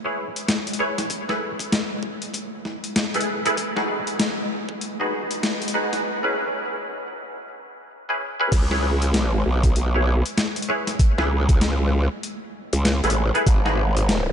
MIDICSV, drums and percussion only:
0, 0, Header, 1, 2, 480
1, 0, Start_track
1, 0, Key_signature, 4, "minor"
1, 0, Tempo, 618557
1, 855, Time_signature, 4, 2, 24, 8
1, 11116, End_track
2, 0, Start_track
2, 0, Title_t, "Drums"
2, 281, Note_on_c, 9, 42, 54
2, 359, Note_off_c, 9, 42, 0
2, 376, Note_on_c, 9, 38, 113
2, 376, Note_on_c, 9, 42, 68
2, 454, Note_off_c, 9, 38, 0
2, 454, Note_off_c, 9, 42, 0
2, 520, Note_on_c, 9, 42, 49
2, 570, Note_off_c, 9, 42, 0
2, 570, Note_on_c, 9, 42, 68
2, 648, Note_off_c, 9, 42, 0
2, 763, Note_on_c, 9, 40, 57
2, 763, Note_on_c, 9, 42, 56
2, 840, Note_off_c, 9, 40, 0
2, 840, Note_off_c, 9, 42, 0
2, 853, Note_on_c, 9, 36, 123
2, 857, Note_on_c, 9, 42, 67
2, 931, Note_off_c, 9, 36, 0
2, 935, Note_off_c, 9, 42, 0
2, 1002, Note_on_c, 9, 40, 52
2, 1080, Note_off_c, 9, 40, 0
2, 1237, Note_on_c, 9, 36, 112
2, 1243, Note_on_c, 9, 42, 54
2, 1315, Note_off_c, 9, 36, 0
2, 1321, Note_off_c, 9, 42, 0
2, 1338, Note_on_c, 9, 38, 116
2, 1338, Note_on_c, 9, 42, 70
2, 1416, Note_off_c, 9, 38, 0
2, 1416, Note_off_c, 9, 42, 0
2, 1573, Note_on_c, 9, 36, 106
2, 1650, Note_off_c, 9, 36, 0
2, 1721, Note_on_c, 9, 42, 54
2, 1799, Note_off_c, 9, 42, 0
2, 1813, Note_on_c, 9, 36, 66
2, 1817, Note_on_c, 9, 42, 66
2, 1891, Note_off_c, 9, 36, 0
2, 1894, Note_off_c, 9, 42, 0
2, 2057, Note_on_c, 9, 40, 37
2, 2135, Note_off_c, 9, 40, 0
2, 2202, Note_on_c, 9, 42, 55
2, 2280, Note_off_c, 9, 42, 0
2, 2296, Note_on_c, 9, 38, 117
2, 2296, Note_on_c, 9, 42, 66
2, 2374, Note_off_c, 9, 38, 0
2, 2374, Note_off_c, 9, 42, 0
2, 2439, Note_on_c, 9, 42, 50
2, 2488, Note_off_c, 9, 42, 0
2, 2488, Note_on_c, 9, 42, 67
2, 2565, Note_off_c, 9, 42, 0
2, 2682, Note_on_c, 9, 42, 57
2, 2759, Note_off_c, 9, 42, 0
2, 2774, Note_on_c, 9, 36, 126
2, 2777, Note_on_c, 9, 42, 69
2, 2851, Note_off_c, 9, 36, 0
2, 2854, Note_off_c, 9, 42, 0
2, 2922, Note_on_c, 9, 40, 51
2, 3000, Note_off_c, 9, 40, 0
2, 3159, Note_on_c, 9, 42, 54
2, 3237, Note_off_c, 9, 42, 0
2, 3256, Note_on_c, 9, 38, 124
2, 3256, Note_on_c, 9, 42, 67
2, 3333, Note_off_c, 9, 38, 0
2, 3333, Note_off_c, 9, 42, 0
2, 3637, Note_on_c, 9, 36, 105
2, 3714, Note_off_c, 9, 36, 0
2, 3735, Note_on_c, 9, 42, 66
2, 3813, Note_off_c, 9, 42, 0
2, 4118, Note_on_c, 9, 42, 53
2, 4196, Note_off_c, 9, 42, 0
2, 4216, Note_on_c, 9, 38, 124
2, 4216, Note_on_c, 9, 42, 68
2, 4294, Note_off_c, 9, 38, 0
2, 4294, Note_off_c, 9, 42, 0
2, 4359, Note_on_c, 9, 42, 51
2, 4407, Note_off_c, 9, 42, 0
2, 4407, Note_on_c, 9, 42, 68
2, 4484, Note_off_c, 9, 42, 0
2, 4601, Note_on_c, 9, 40, 54
2, 4601, Note_on_c, 9, 42, 55
2, 4678, Note_off_c, 9, 40, 0
2, 4678, Note_off_c, 9, 42, 0
2, 6612, Note_on_c, 9, 36, 123
2, 6616, Note_on_c, 9, 42, 73
2, 6616, Note_on_c, 9, 49, 105
2, 6689, Note_off_c, 9, 36, 0
2, 6693, Note_off_c, 9, 42, 0
2, 6693, Note_off_c, 9, 49, 0
2, 6759, Note_on_c, 9, 40, 56
2, 6837, Note_off_c, 9, 40, 0
2, 6998, Note_on_c, 9, 42, 57
2, 7076, Note_off_c, 9, 42, 0
2, 7094, Note_on_c, 9, 38, 118
2, 7094, Note_on_c, 9, 42, 67
2, 7171, Note_off_c, 9, 38, 0
2, 7171, Note_off_c, 9, 42, 0
2, 7476, Note_on_c, 9, 36, 102
2, 7478, Note_on_c, 9, 42, 56
2, 7554, Note_off_c, 9, 36, 0
2, 7555, Note_off_c, 9, 42, 0
2, 7572, Note_on_c, 9, 42, 68
2, 7650, Note_off_c, 9, 42, 0
2, 7958, Note_on_c, 9, 42, 57
2, 8036, Note_off_c, 9, 42, 0
2, 8052, Note_on_c, 9, 38, 113
2, 8052, Note_on_c, 9, 42, 66
2, 8129, Note_off_c, 9, 38, 0
2, 8129, Note_off_c, 9, 42, 0
2, 8196, Note_on_c, 9, 42, 51
2, 8244, Note_off_c, 9, 42, 0
2, 8244, Note_on_c, 9, 42, 66
2, 8322, Note_off_c, 9, 42, 0
2, 8438, Note_on_c, 9, 40, 56
2, 8438, Note_on_c, 9, 42, 58
2, 8515, Note_off_c, 9, 40, 0
2, 8515, Note_off_c, 9, 42, 0
2, 8532, Note_on_c, 9, 36, 127
2, 8534, Note_on_c, 9, 42, 72
2, 8609, Note_off_c, 9, 36, 0
2, 8612, Note_off_c, 9, 42, 0
2, 8679, Note_on_c, 9, 40, 54
2, 8756, Note_off_c, 9, 40, 0
2, 8916, Note_on_c, 9, 36, 112
2, 8917, Note_on_c, 9, 42, 57
2, 8993, Note_off_c, 9, 36, 0
2, 8995, Note_off_c, 9, 42, 0
2, 9012, Note_on_c, 9, 38, 123
2, 9012, Note_on_c, 9, 42, 69
2, 9090, Note_off_c, 9, 38, 0
2, 9090, Note_off_c, 9, 42, 0
2, 9493, Note_on_c, 9, 42, 67
2, 9571, Note_off_c, 9, 42, 0
2, 9877, Note_on_c, 9, 42, 57
2, 9954, Note_off_c, 9, 42, 0
2, 9972, Note_on_c, 9, 38, 120
2, 9972, Note_on_c, 9, 42, 68
2, 10050, Note_off_c, 9, 38, 0
2, 10050, Note_off_c, 9, 42, 0
2, 10117, Note_on_c, 9, 42, 53
2, 10166, Note_off_c, 9, 42, 0
2, 10166, Note_on_c, 9, 42, 68
2, 10243, Note_off_c, 9, 42, 0
2, 10359, Note_on_c, 9, 42, 58
2, 10437, Note_off_c, 9, 42, 0
2, 10450, Note_on_c, 9, 36, 127
2, 10453, Note_on_c, 9, 42, 71
2, 10527, Note_off_c, 9, 36, 0
2, 10531, Note_off_c, 9, 42, 0
2, 10597, Note_on_c, 9, 40, 52
2, 10675, Note_off_c, 9, 40, 0
2, 10838, Note_on_c, 9, 42, 57
2, 10915, Note_off_c, 9, 42, 0
2, 10933, Note_on_c, 9, 38, 127
2, 10933, Note_on_c, 9, 42, 69
2, 11011, Note_off_c, 9, 38, 0
2, 11011, Note_off_c, 9, 42, 0
2, 11116, End_track
0, 0, End_of_file